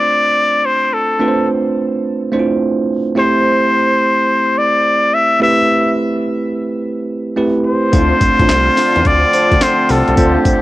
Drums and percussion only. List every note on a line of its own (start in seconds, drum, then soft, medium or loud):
7.93 kick loud
7.93 closed hi-hat medium
7.93 tambourine medium
8.21 kick loud
8.21 closed hi-hat medium
8.21 tambourine medium
8.39 kick loud
8.39 closed hi-hat medium
8.49 snare loud
8.49 clap loud
8.49 closed hi-hat medium
8.49 tambourine loud
8.77 snare medium
8.77 open hi-hat medium
8.77 tambourine medium
8.96 closed hi-hat medium
9.05 kick medium
9.05 closed hi-hat medium
9.33 closed hi-hat medium
9.33 tambourine medium
9.52 kick medium
9.52 closed hi-hat medium
9.61 snare loud
9.61 clap medium
9.61 closed hi-hat medium
9.61 tambourine medium
9.89 open hi-hat medium
9.89 tambourine medium
10.08 closed hi-hat soft
10.17 kick loud
10.17 closed hi-hat medium
10.17 tambourine medium
10.45 kick loud
10.45 closed hi-hat medium
10.45 tambourine medium